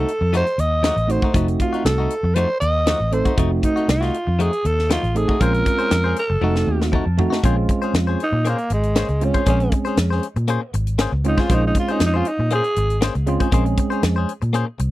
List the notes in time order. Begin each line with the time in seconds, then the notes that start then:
Already playing: D#4 A4
0.00 A3
0.08 closed hi-hat
0.21 F2, muted clean electric guitar stroke
0.33 F3 A3 D#4 F#4 C5, closed hi-hat
0.47 muted clean electric guitar stroke, closed hi-hat
0.58 D#2 D#5, muted clean electric guitar stroke, closed hi-hat
0.83 F3 A3 D#4 F#4, snare, closed hi-hat
0.96 A1, muted clean electric guitar stroke, closed hi-hat
1.08 A3 C4 D#4 F#4 C5, muted clean electric guitar stroke, closed hi-hat
1.22 A3 D#4 F#4, kick
1.33 F1 F3 A3 C4 D#4 F#4, kick, closed hi-hat
1.48 muted clean electric guitar stroke, closed hi-hat
1.60 F4, muted clean electric guitar stroke, kick, closed hi-hat
1.73 A3 D#4 F#4, closed hi-hat
1.85 C2 A4, muted clean electric guitar stroke, snare, closed hi-hat
1.98 A3 D#4 F#4
2.10 closed hi-hat
2.23 F2, muted clean electric guitar stroke
2.35 F3 A3 D#4 F#4 C5, closed hi-hat
2.50 muted clean electric guitar stroke
2.60 D#2 D#5, muted clean electric guitar stroke, closed hi-hat
2.87 F3 A3 D#4 F#4, snare, closed hi-hat
3.00 A1, muted clean electric guitar stroke
3.12 A3 C4 D#4 A4 C5, muted clean electric guitar stroke, closed hi-hat
3.25 A3 D#4 F#4, kick, closed hi-hat
3.37 F1 F3 A3 C4 D#4 F#4, kick, closed hi-hat
3.63 D#4, muted clean electric guitar stroke, kick, closed hi-hat
3.76 A3 D#4 F#4, closed hi-hat
3.88 C2 F4, snare, closed hi-hat
4.01 A3 D#4 F#4, snare, closed hi-hat
4.14 closed hi-hat
4.27 F2, muted clean electric guitar stroke
4.39 F3 A3 D#4 F#4 G#4, closed hi-hat
4.53 muted clean electric guitar stroke, closed hi-hat
4.65 D#2 A4, muted clean electric guitar stroke, closed hi-hat
4.79 snare
4.90 F3 A3 D#4 F4 F#4, snare, closed hi-hat
5.03 A1, muted clean electric guitar stroke, closed hi-hat
5.15 A3 C4 D#4 G#4 A4, muted clean electric guitar stroke, closed hi-hat
5.28 A3 D#4 F#4, kick
5.40 A#1 G#3 A#3 C4 C#4 F4 G#4 A#4 C5, kick, closed hi-hat
5.54 closed hi-hat
5.66 muted clean electric guitar stroke, kick, closed hi-hat
5.79 C#4 G#4 C5, closed hi-hat
5.91 F2, muted clean electric guitar stroke, snare, closed hi-hat
6.04 C#4 G#4 C5
6.16 A4, closed hi-hat
6.30 F#1, muted clean electric guitar stroke
6.41 F1 F3 A3 C4 D#4 F#4, high tom
6.56 snare
6.67 D#2, muted clean electric guitar stroke
6.82 snare
6.92 F3 A3 D#4 F#4 A5, kick
7.06 F2, muted clean electric guitar stroke
7.18 A3 C4 D#4 F#4, muted clean electric guitar stroke, floor tom
7.30 A3 D#4 F#4, snare
7.43 A#1 G#3 A#3 C4 C#4 F4 G#4 C5, kick, closed hi-hat
7.57 muted clean electric guitar stroke
7.69 muted clean electric guitar stroke, kick, closed hi-hat
7.82 C#4 G#4 C5, closed hi-hat
7.94 F2, muted clean electric guitar stroke, snare, closed hi-hat
8.07 C#4 G#4 C5
8.20 D#4, closed hi-hat
8.32 A#2, muted clean electric guitar stroke
8.45 A#3 C#4 G#4 C5, closed hi-hat
8.49 A#3
8.58 muted clean electric guitar stroke, closed hi-hat
8.70 G#1 G#3, muted clean electric guitar stroke, closed hi-hat
8.83 closed hi-hat
8.95 A#3 C#4 G#4 C5, snare, closed hi-hat
9.09 C#2, muted clean electric guitar stroke, closed hi-hat
9.21 G#3 C4 C#4 F4, muted clean electric guitar stroke, closed hi-hat
9.25 C#4
9.34 C#4 G#4 C5, kick, closed hi-hat
9.46 A#1 G#3 A#3 C4 C#4 G#4 C5, kick, closed hi-hat
9.60 closed hi-hat
9.72 muted clean electric guitar stroke, kick, closed hi-hat
9.85 C#4 G#4 C5, closed hi-hat
9.97 F2, muted clean electric guitar stroke, snare, closed hi-hat
10.10 C#4 G#4 C5, snare
10.23 closed hi-hat
10.36 A#2, muted clean electric guitar stroke, closed hi-hat
10.48 A#3 C#4 G#4 C5, closed hi-hat
10.62 muted clean electric guitar stroke
10.74 G#1, muted clean electric guitar stroke, closed hi-hat
10.87 closed hi-hat
10.98 A#3 C#4 G#4 C5, snare, closed hi-hat
11.12 C#2, muted clean electric guitar stroke
11.24 G#3 C4 C#4 D#4 F4, muted clean electric guitar stroke, closed hi-hat
11.37 C#4 F4 G#4 C5, kick, snare
11.49 A#1 G#3 A#3 C4 C#4 F4 G#4 C5, kick, closed hi-hat
11.55 D#4
11.67 D#4
11.75 muted clean electric guitar stroke, kick, closed hi-hat
11.79 F4
11.88 C#4 G#4 C5, closed hi-hat
11.92 D#4
12.00 F2, muted clean electric guitar stroke, snare, closed hi-hat
12.06 D#4
12.14 C#4 F4 G#4 C5
12.25 D#4, closed hi-hat
12.39 A#2, muted clean electric guitar stroke
12.50 A#3 C#4 G#4 C5, closed hi-hat
12.55 G#4
12.64 muted clean electric guitar stroke, closed hi-hat
12.76 G#1, muted clean electric guitar stroke, closed hi-hat
12.90 closed hi-hat
13.01 A#3 C#4 G#4 C5, snare, closed hi-hat
13.15 C#2, muted clean electric guitar stroke, closed hi-hat
13.26 G#3 C4 C#4 F4, muted clean electric guitar stroke, closed hi-hat
13.40 C#4 G#4 C5, kick, closed hi-hat
13.52 A#1 G#3 A#3 C4 C#4 G#4 C5, kick, closed hi-hat
13.65 muted clean electric guitar stroke, closed hi-hat
13.78 muted clean electric guitar stroke, kick, closed hi-hat
13.90 C#4 G#4 C5, closed hi-hat
14.03 F2, muted clean electric guitar stroke, snare, closed hi-hat
14.16 C#4 G#4 C5
14.29 closed hi-hat
14.42 A#2, muted clean electric guitar stroke, closed hi-hat
14.53 A#3 C#4 G#4 C5, closed hi-hat
14.67 muted clean electric guitar stroke
14.79 C2, muted clean electric guitar stroke, closed hi-hat